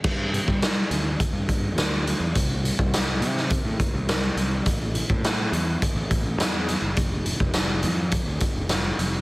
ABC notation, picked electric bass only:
X:1
M:4/4
L:1/16
Q:1/4=104
K:Am
V:1 name="Picked electric bass" clef=bass
G,,3 G,3 D,,2 z G,,3 D,,3 E,, | C,,3 C,,3 C,3 A,, z C,,3 C,,2 | A,,,3 A,,3 E,,2 z A,,,3 E,,3 ^F,,, | F,,,3 F,,,3 F,,3 D,, z F,,,3 F,,,2 |]